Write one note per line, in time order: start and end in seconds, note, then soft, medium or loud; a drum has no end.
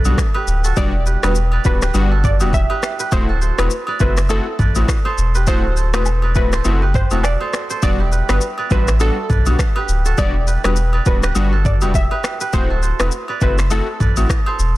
0.00 0.13 B1 medium
0.00 0.16 E4 medium
0.00 0.13 G4 medium
0.00 0.34 B4 medium
0.00 0.99 D5 medium
0.00 0.33 E5 medium
0.05 0.17 G3 medium
0.05 0.17 B3 medium
0.05 0.18 D4 medium
0.05 0.18 F#4 medium
0.05 high agogo medium
0.05 shaker medium
0.18 finger snap medium
0.18 kick medium
0.18 cross-stick medium
0.18 shaker medium
0.34 0.71 G4 medium
0.34 1.06 B4 medium
0.34 high agogo medium
0.47 0.72 D1 medium
0.47 shaker medium
0.64 0.83 F#4 medium
0.64 1.96 A4 medium
0.64 shaker medium
0.76 1.16 E1 loud
0.76 0.93 G3 medium
0.76 0.93 B3 medium
0.76 0.93 D4 medium
0.76 2.34 E4 medium
0.76 0.93 F#4 loud
0.76 1.07 G4 medium
0.76 0.92 D5 loud
0.76 kick loud
0.76 high agogo medium
0.76 shaker medium
1.06 1.24 G4 medium
1.06 1.23 B4 medium
1.06 shaker medium
1.23 1.59 E1 medium
1.23 1.35 G3 medium
1.23 1.35 B3 medium
1.23 1.35 D4 medium
1.23 1.35 F#4 medium
1.23 1.82 G4 medium
1.23 1.53 B4 medium
1.23 1.34 B4 medium
1.23 finger snap medium
1.23 cross-stick loud
1.23 high agogo medium
1.23 shaker medium
1.35 shaker medium
1.52 1.82 B4 medium
1.52 2.63 D5 medium
1.52 high agogo medium
1.65 1.90 D1 medium
1.65 1.81 G3 medium
1.65 1.81 B3 medium
1.65 1.82 D4 medium
1.65 1.82 F#4 medium
1.65 1.80 B4 medium
1.65 kick medium
1.65 shaker soft
1.82 2.18 G4 medium
1.82 2.70 B4 medium
1.82 finger snap medium
1.82 cross-stick loud
1.82 shaker medium
1.94 2.42 G1 medium
1.94 2.11 G3 medium
1.94 2.11 B3 medium
1.94 2.11 D4 medium
1.94 2.11 F#4 loud
1.94 high agogo medium
1.94 shaker medium
2.11 2.47 F#4 medium
2.11 3.29 A4 medium
2.24 2.39 D5 medium
2.24 kick medium
2.24 mid tom medium
2.24 shaker soft
2.40 2.66 E1 medium
2.40 2.53 G3 medium
2.40 2.53 B3 medium
2.40 2.53 D4 medium
2.40 3.98 E4 medium
2.40 2.53 F#4 medium
2.40 2.71 G4 medium
2.40 high agogo medium
2.40 shaker medium
2.53 2.97 E5 medium
2.53 kick medium
2.53 shaker medium
2.70 3.00 G4 medium
2.70 2.99 B4 medium
2.70 high agogo medium
2.83 finger snap medium
2.83 cross-stick medium
2.83 shaker medium
3.00 3.36 G4 medium
3.00 3.47 B4 medium
3.00 shaker medium
3.12 3.52 D1 loud
3.12 3.28 A3 medium
3.12 3.28 C4 medium
3.12 3.29 E4 medium
3.12 3.29 F#4 loud
3.12 3.27 C5 loud
3.12 kick loud
3.12 high agogo medium
3.12 shaker medium
3.29 4.76 F#4 medium
3.29 3.42 A4 medium
3.41 4.74 A4 medium
3.41 3.95 C5 medium
3.41 shaker medium
3.58 3.69 E1 medium
3.58 3.70 A3 medium
3.58 3.70 C4 medium
3.58 3.70 E4 medium
3.58 3.71 F#4 medium
3.58 3.69 B4 medium
3.58 finger snap medium
3.58 cross-stick loud
3.58 high agogo medium
3.58 shaker medium
3.71 shaker medium
3.87 4.07 B4 medium
3.87 4.58 D5 medium
3.87 high agogo medium
4.00 4.40 F#1 medium
4.00 4.17 A3 medium
4.00 4.17 C4 medium
4.00 4.17 E4 medium
4.00 4.17 F#4 medium
4.00 4.15 B4 medium
4.00 4.66 C5 medium
4.00 5.04 E5 medium
4.00 kick medium
4.00 shaker soft
4.17 finger snap medium
4.17 cross-stick loud
4.17 shaker medium
4.29 4.46 A3 medium
4.29 4.46 C4 medium
4.29 4.46 E4 medium
4.29 4.46 F#4 loud
4.29 4.74 A4 loud
4.29 high agogo medium
4.29 shaker medium
4.59 4.84 A1 loud
4.59 5.11 B4 medium
4.59 5.70 D5 medium
4.59 kick medium
4.59 mid tom medium
4.59 shaker soft
4.75 4.88 A3 medium
4.75 4.88 C4 medium
4.75 4.88 E4 medium
4.75 4.88 F#4 medium
4.75 high agogo medium
4.75 shaker medium
4.88 finger snap medium
4.88 kick medium
4.88 cross-stick medium
4.88 shaker medium
5.05 5.47 A4 medium
5.05 5.41 C5 medium
5.05 high agogo medium
5.18 5.49 E1 medium
5.18 shaker medium
5.35 5.54 G4 medium
5.35 5.83 B4 medium
5.35 shaker medium
5.47 5.95 D1 loud
5.47 5.64 A3 loud
5.47 5.64 C4 medium
5.47 5.64 E4 medium
5.47 5.64 F#4 loud
5.47 6.89 F#4 medium
5.47 5.77 A4 medium
5.47 5.62 C5 loud
5.47 kick loud
5.47 high agogo medium
5.47 shaker medium
5.77 5.94 A4 medium
5.77 5.93 C5 medium
5.77 shaker medium
5.93 6.37 E1 medium
5.93 6.06 A3 medium
5.93 6.06 C4 medium
5.93 6.06 E4 medium
5.93 6.06 F#4 medium
5.93 6.53 A4 medium
5.93 6.05 B4 medium
5.93 6.30 C5 medium
5.93 finger snap medium
5.93 cross-stick loud
5.93 high agogo medium
5.93 shaker medium
6.06 low woodblock medium
6.06 shaker medium
6.22 6.59 B4 medium
6.22 7.34 D5 medium
6.22 high agogo medium
6.35 6.61 D1 medium
6.35 6.52 A3 medium
6.35 6.52 C4 medium
6.35 6.52 E4 medium
6.35 6.52 F#4 medium
6.35 6.51 B4 medium
6.35 kick medium
6.35 shaker soft
6.53 7.11 A4 medium
6.53 6.88 C5 medium
6.53 finger snap medium
6.53 cross-stick loud
6.53 shaker medium
6.65 7.04 F#1 medium
6.65 6.81 A3 medium
6.65 6.81 C4 medium
6.65 6.82 E4 medium
6.65 6.82 F#4 loud
6.65 high agogo medium
6.65 shaker medium
6.82 7.18 G4 medium
6.82 7.47 B4 medium
6.94 7.09 C5 medium
6.94 kick medium
6.94 mid tom medium
6.94 shaker soft
7.11 7.36 E1 medium
7.11 7.23 A3 medium
7.11 7.23 C4 medium
7.11 7.23 E4 medium
7.11 7.24 F#4 medium
7.11 8.06 F#4 medium
7.11 7.41 A4 medium
7.11 high agogo medium
7.11 shaker medium
7.23 7.68 D5 medium
7.23 finger snap medium
7.23 cross-stick medium
7.23 low woodblock medium
7.23 shaker medium
7.41 7.71 A4 medium
7.41 7.70 C5 medium
7.41 high agogo medium
7.53 finger snap medium
7.53 cross-stick medium
7.53 shaker medium
7.70 9.03 A4 medium
7.70 8.18 C5 medium
7.70 shaker medium
7.82 8.22 E1 loud
7.82 7.99 G3 medium
7.82 7.99 B3 medium
7.82 7.99 D4 medium
7.82 7.99 F#4 loud
7.82 7.98 D5 loud
7.82 kick loud
7.82 high agogo medium
7.82 shaker medium
8.00 9.57 E4 medium
8.00 8.12 G4 medium
8.12 9.54 G4 medium
8.12 8.59 B4 medium
8.12 shaker medium
8.29 8.40 G1 medium
8.29 8.41 G3 medium
8.29 8.41 B3 medium
8.29 8.41 D4 medium
8.29 8.41 F#4 medium
8.29 8.40 B4 medium
8.29 finger snap medium
8.29 cross-stick loud
8.29 high agogo medium
8.29 shaker medium
8.41 shaker medium
8.58 8.78 B4 medium
8.58 9.29 D5 medium
8.58 high agogo medium
8.71 9.10 A1 medium
8.71 8.87 G3 medium
8.71 8.87 B3 medium
8.71 8.87 D4 medium
8.71 8.88 F#4 medium
8.71 8.86 B4 medium
8.71 9.37 C5 medium
8.71 9.74 E5 medium
8.71 kick medium
8.71 shaker soft
8.88 finger snap medium
8.88 cross-stick loud
8.88 shaker medium
9.00 9.17 G3 medium
9.00 9.17 B3 medium
9.00 9.17 D4 medium
9.00 9.17 F#4 loud
9.00 9.44 A4 loud
9.00 high agogo medium
9.00 shaker medium
9.30 9.55 B1 medium
9.30 9.76 B4 medium
9.30 10.40 D5 medium
9.30 kick medium
9.30 mid tom medium
9.30 shaker soft
9.46 9.59 G3 medium
9.46 9.59 B3 medium
9.46 9.59 D4 medium
9.46 9.59 F#4 medium
9.46 high agogo medium
9.46 shaker medium
9.59 finger snap medium
9.59 kick medium
9.59 cross-stick medium
9.59 shaker medium
9.76 10.12 G4 medium
9.76 10.47 B4 medium
9.76 high agogo medium
9.88 10.13 D1 medium
9.88 shaker medium
10.05 10.24 F#4 medium
10.05 11.37 A4 medium
10.05 shaker medium
10.18 10.57 E1 loud
10.18 10.34 G3 medium
10.18 10.34 B3 medium
10.18 10.34 D4 medium
10.18 11.75 E4 medium
10.18 10.35 F#4 loud
10.18 10.48 G4 medium
10.18 10.33 D5 loud
10.18 kick loud
10.18 high agogo medium
10.18 shaker medium
10.47 10.65 G4 medium
10.47 10.64 B4 medium
10.47 shaker medium
10.64 11.00 E1 medium
10.64 10.76 G3 medium
10.64 10.76 B3 medium
10.64 10.76 D4 medium
10.64 10.76 F#4 medium
10.64 11.23 G4 medium
10.64 10.94 B4 medium
10.64 10.75 B4 medium
10.64 finger snap medium
10.64 cross-stick loud
10.64 high agogo medium
10.64 shaker medium
10.76 shaker medium
10.93 11.23 B4 medium
10.93 12.05 D5 medium
10.93 high agogo medium
11.06 11.31 D1 medium
11.06 11.23 G3 medium
11.06 11.23 B3 medium
11.06 11.23 D4 medium
11.06 11.23 F#4 medium
11.06 11.21 B4 medium
11.06 kick medium
11.06 shaker soft
11.23 11.59 G4 medium
11.23 12.11 B4 medium
11.23 finger snap medium
11.23 cross-stick loud
11.23 shaker medium
11.35 11.83 G1 medium
11.35 11.52 G3 medium
11.35 11.52 B3 medium
11.35 11.52 D4 medium
11.35 11.52 F#4 loud
11.35 high agogo medium
11.35 shaker medium
11.53 11.88 F#4 medium
11.53 12.70 A4 medium
11.65 11.80 D5 medium
11.65 kick medium
11.65 mid tom medium
11.65 shaker soft
11.81 12.07 E1 medium
11.81 11.94 G3 medium
11.81 11.94 B3 medium
11.81 11.94 D4 medium
11.81 13.39 E4 medium
11.81 11.94 F#4 medium
11.81 12.12 G4 medium
11.81 high agogo medium
11.81 shaker medium
11.94 12.38 E5 medium
11.94 kick medium
11.94 shaker medium
12.11 12.41 G4 medium
12.11 12.40 B4 medium
12.11 high agogo medium
12.24 finger snap medium
12.24 cross-stick medium
12.24 shaker medium
12.41 12.77 G4 medium
12.41 12.89 B4 medium
12.41 shaker medium
12.53 12.93 D1 loud
12.53 12.70 A3 loud
12.53 12.70 C4 medium
12.53 12.70 E4 medium
12.53 12.70 F#4 loud
12.53 12.68 C5 loud
12.53 kick loud
12.53 high agogo medium
12.53 shaker medium
12.70 14.17 F#4 medium
12.70 12.83 A4 medium
12.83 14.15 A4 medium
12.83 13.36 C5 medium
12.83 shaker medium
12.99 13.10 E1 medium
12.99 13.11 A3 medium
12.99 13.12 C4 medium
12.99 13.12 E4 medium
12.99 13.12 F#4 medium
12.99 13.11 B4 medium
12.99 finger snap medium
12.99 cross-stick loud
12.99 high agogo medium
12.99 shaker medium
13.12 shaker medium
13.28 13.48 B4 medium
13.28 14.00 D5 medium
13.28 high agogo medium
13.41 13.81 F#1 medium
13.41 13.58 A3 medium
13.41 13.58 C4 medium
13.41 13.58 E4 medium
13.41 13.58 F#4 medium
13.41 13.56 B4 medium
13.41 14.07 C5 medium
13.41 14.45 E5 medium
13.41 kick medium
13.41 shaker soft
13.58 finger snap medium
13.58 cross-stick medium
13.58 shaker medium
13.70 13.87 A3 medium
13.70 13.87 C4 medium
13.70 13.87 E4 medium
13.70 13.88 F#4 loud
13.70 14.15 A4 loud
13.70 high agogo medium
13.70 shaker medium
14.00 14.25 A1 medium
14.00 14.53 B4 medium
14.00 14.77 D5 medium
14.00 kick medium
14.00 mid tom medium
14.00 shaker soft
14.17 14.29 A3 medium
14.17 14.29 C4 medium
14.17 14.29 E4 medium
14.17 14.29 F#4 medium
14.17 high agogo medium
14.17 shaker medium
14.29 finger snap medium
14.29 kick medium
14.29 cross-stick medium
14.29 shaker medium
14.46 14.77 A4 medium
14.46 14.77 C5 medium
14.46 high agogo medium
14.59 14.77 E1 medium
14.59 shaker medium